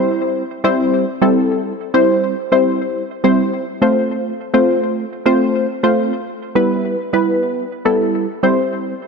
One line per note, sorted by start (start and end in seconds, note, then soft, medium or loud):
0.00 0.43 G3 medium
0.00 0.43 C4 medium
0.00 0.43 E4 medium
0.00 0.43 C5 loud
0.64 1.05 G3 loud
0.64 1.05 C4 medium
0.64 1.05 E4 medium
0.64 1.05 C5 loud
1.22 1.73 G3 medium
1.22 1.73 C4 medium
1.22 1.73 E4 medium
1.22 1.73 A4 loud
1.94 2.35 G3 medium
1.94 2.35 C4 medium
1.94 2.35 E4 medium
1.94 2.35 C5 loud
2.52 3.03 G3 medium
2.52 3.03 C4 medium
2.52 3.03 E4 medium
2.52 3.03 C5 medium
3.24 3.65 G3 medium
3.24 3.65 C4 medium
3.24 3.65 E4 medium
3.24 3.65 C5 loud
3.82 4.32 A3 medium
3.82 4.33 C4 medium
3.82 4.33 F4 medium
3.82 4.33 C5 medium
4.54 5.05 A3 medium
4.54 5.05 C4 medium
4.54 5.05 F4 medium
4.54 5.05 C5 medium
5.26 5.66 A3 loud
5.26 5.67 C4 medium
5.26 5.67 F4 medium
5.26 5.67 C5 loud
5.83 6.12 A3 medium
5.83 6.12 C4 medium
5.83 6.12 F4 medium
5.83 6.12 C5 loud
6.55 6.96 G3 medium
6.55 6.96 B3 medium
6.55 6.96 E4 medium
6.55 6.96 B4 loud
7.13 7.64 G3 medium
7.13 7.64 B3 medium
7.13 7.64 E4 medium
7.13 7.64 B4 medium
7.85 8.26 G3 medium
7.85 8.26 B3 medium
7.85 8.26 E4 medium
7.85 8.26 A4 loud
8.43 8.94 G3 medium
8.43 8.94 C4 medium
8.43 8.94 E4 medium
8.43 8.94 C5 medium